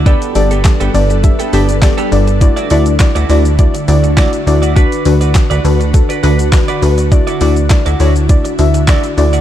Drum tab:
HH |xxoxxxoxxxoxxxox|xxoxxxoxxxoxxxox|xxoxxxoxxxoxxxox|xxoxxxoxxxoxxxox|
SH |xxxxxxxxxxxxxxxx|xxxxxxxxxxxxxxxx|xxxxxxxxxxxxxxxx|xxxxxxxxxxxxxxxx|
CP |----x-------x---|----x-------x---|----x-------x---|----x-------x---|
SD |----o-------o---|----o-------o---|----o-------o---|----o-------o---|
BD |o---o---o---o---|o---o---o---o---|o---o---o---o---|o---o---o---o---|